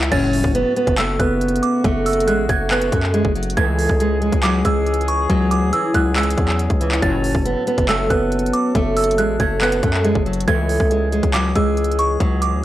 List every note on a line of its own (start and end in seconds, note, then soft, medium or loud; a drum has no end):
0.00 0.10 C#2 loud
0.00 clap loud
0.12 0.43 F#1 loud
0.12 0.42 C#2 loud
0.12 0.42 A2 loud
0.12 3.54 C#3 medium
0.12 0.42 F#3 loud
0.12 3.54 A3 medium
0.12 0.52 C#4 loud
0.12 3.54 F#4 loud
0.12 0.94 A6 loud
0.12 kick loud
0.12 closed hi-hat medium
0.12 crash loud
0.33 open hi-hat medium
0.44 0.65 F#1 loud
0.44 kick loud
0.55 0.72 B3 medium
0.55 closed hi-hat medium
0.76 0.94 B3 medium
0.76 closed hi-hat soft
0.87 1.18 F#1 loud
0.87 kick loud
0.87 closed hi-hat medium
0.98 1.15 A3 medium
0.98 1.18 E6 medium
0.98 clap loud
0.98 closed hi-hat medium
1.20 1.61 F#1 loud
1.20 1.81 B3 medium
1.20 1.60 F#6 medium
1.20 kick medium
1.20 closed hi-hat medium
1.41 closed hi-hat medium
1.48 closed hi-hat medium
1.56 closed hi-hat medium
1.63 1.83 D6 medium
1.63 closed hi-hat medium
1.84 2.29 F#1 loud
1.84 2.25 A3 loud
1.84 kick loud
1.84 closed hi-hat medium
2.06 2.26 E6 medium
2.06 closed hi-hat medium
2.06 open hi-hat medium
2.13 closed hi-hat medium
2.20 closed hi-hat medium
2.27 2.48 A1 loud
2.27 2.45 G#3 medium
2.27 2.48 F#6 medium
2.27 closed hi-hat medium
2.49 2.91 F#1 loud
2.49 2.66 A3 medium
2.49 2.70 G#6 medium
2.49 kick medium
2.49 closed hi-hat medium
2.71 2.88 B3 medium
2.71 3.11 F#6 medium
2.71 clap loud
2.71 closed hi-hat soft
2.81 closed hi-hat medium
2.92 3.23 F#2 loud
2.92 3.09 A3 medium
2.92 kick medium
2.92 closed hi-hat medium
3.03 clap medium
3.14 3.31 G#3 medium
3.14 closed hi-hat medium
3.25 3.56 F#1 loud
3.25 kick loud
3.35 3.52 F#3 medium
3.35 closed hi-hat soft
3.43 closed hi-hat medium
3.50 closed hi-hat medium
3.57 3.88 C#2 loud
3.57 3.88 E3 loud
3.57 6.99 E3 medium
3.57 3.98 A3 loud
3.57 12.65 C#4 medium
3.57 6.99 G#4 loud
3.57 4.39 G#6 loud
3.57 kick loud
3.57 closed hi-hat medium
3.79 open hi-hat medium
3.89 4.31 C#2 loud
3.89 kick loud
4.00 4.17 G#3 medium
4.00 closed hi-hat medium
4.22 4.39 G#3 medium
4.22 closed hi-hat soft
4.32 4.64 C#2 loud
4.32 kick loud
4.32 closed hi-hat medium
4.43 4.60 F#3 loud
4.43 4.64 D6 medium
4.43 clap loud
4.43 closed hi-hat medium
4.65 5.27 C#2 loud
4.65 5.26 G#3 medium
4.65 5.06 E6 medium
4.65 kick medium
4.65 closed hi-hat medium
4.86 closed hi-hat medium
4.94 closed hi-hat medium
5.01 closed hi-hat medium
5.08 5.29 C#6 medium
5.08 closed hi-hat medium
5.29 5.64 C#2 loud
5.29 5.70 F#3 loud
5.29 kick loud
5.29 closed hi-hat medium
5.51 5.72 D6 medium
5.51 closed hi-hat medium
5.62 5.72 D2 loud
5.73 5.90 E3 medium
5.73 5.93 E6 medium
5.73 closed hi-hat medium
5.94 6.36 C#2 loud
5.94 6.12 F#3 medium
5.94 6.15 F#6 medium
5.94 kick medium
5.94 closed hi-hat medium
6.16 6.33 G#3 medium
6.16 6.98 E6 medium
6.16 clap loud
6.16 closed hi-hat soft
6.23 closed hi-hat medium
6.30 closed hi-hat medium
6.38 6.69 E2 loud
6.38 6.78 F#3 medium
6.38 kick medium
6.38 closed hi-hat medium
6.48 clap medium
6.59 closed hi-hat medium
6.70 7.01 C#2 loud
6.70 kick loud
6.70 closed hi-hat soft
6.81 6.98 E3 medium
6.81 closed hi-hat medium
6.92 clap loud
7.02 7.33 F#1 loud
7.02 7.33 C#2 loud
7.02 7.33 A2 loud
7.02 7.33 F#3 loud
7.02 10.44 F#3 medium
7.02 7.43 C#4 loud
7.02 10.44 A4 medium
7.02 7.85 A6 loud
7.02 kick loud
7.02 closed hi-hat medium
7.24 open hi-hat medium
7.35 7.55 F#1 loud
7.35 kick loud
7.45 7.62 B3 medium
7.45 closed hi-hat medium
7.67 7.84 B3 medium
7.67 closed hi-hat soft
7.78 8.09 F#1 loud
7.78 kick loud
7.78 closed hi-hat medium
7.88 8.06 A3 medium
7.88 8.09 E6 medium
7.88 clap loud
7.88 closed hi-hat medium
8.10 8.52 F#1 loud
8.10 8.71 B3 medium
8.10 8.51 F#6 medium
8.10 kick medium
8.10 closed hi-hat medium
8.32 closed hi-hat medium
8.39 closed hi-hat medium
8.46 closed hi-hat medium
8.53 8.74 D6 medium
8.53 closed hi-hat medium
8.75 9.20 F#1 loud
8.75 9.16 A3 loud
8.75 kick loud
8.75 closed hi-hat medium
8.97 9.17 E6 medium
8.97 closed hi-hat medium
8.97 open hi-hat medium
9.04 closed hi-hat medium
9.11 closed hi-hat medium
9.18 9.39 A1 loud
9.18 9.35 G#3 medium
9.18 9.39 F#6 medium
9.18 closed hi-hat medium
9.40 9.81 F#1 loud
9.40 9.57 A3 medium
9.40 9.60 G#6 medium
9.40 kick medium
9.40 closed hi-hat medium
9.61 9.78 B3 medium
9.61 10.02 F#6 medium
9.61 clap loud
9.61 closed hi-hat soft
9.72 closed hi-hat medium
9.83 10.14 F#2 loud
9.83 10.00 A3 medium
9.83 kick medium
9.83 closed hi-hat medium
9.94 clap medium
10.05 10.22 G#3 medium
10.05 closed hi-hat medium
10.15 10.46 F#1 loud
10.15 kick loud
10.26 10.43 F#3 medium
10.26 closed hi-hat soft
10.33 closed hi-hat medium
10.40 closed hi-hat medium
10.48 10.78 C#2 loud
10.48 10.79 C#2 loud
10.48 10.78 E3 loud
10.48 12.65 E3 medium
10.48 10.88 A3 loud
10.48 12.65 G#4 loud
10.48 11.30 G#6 loud
10.48 kick loud
10.48 closed hi-hat medium
10.69 open hi-hat medium
10.80 11.21 C#2 loud
10.80 kick loud
10.91 11.08 G#3 medium
10.91 closed hi-hat medium
11.12 11.29 G#3 medium
11.12 closed hi-hat soft
11.23 11.54 C#2 loud
11.23 kick medium
11.23 closed hi-hat medium
11.34 11.51 F#3 medium
11.34 11.54 D6 medium
11.34 clap loud
11.34 closed hi-hat medium
11.56 12.18 C#2 loud
11.56 12.17 G#3 medium
11.56 11.96 E6 medium
11.56 kick medium
11.56 closed hi-hat medium
11.77 closed hi-hat medium
11.84 closed hi-hat medium
11.92 closed hi-hat medium
11.99 12.19 C#6 medium
11.99 closed hi-hat medium
12.20 12.54 C#2 loud
12.20 12.61 F#3 loud
12.20 kick loud
12.20 closed hi-hat medium
12.42 12.62 D6 medium
12.42 closed hi-hat medium
12.53 12.63 D2 loud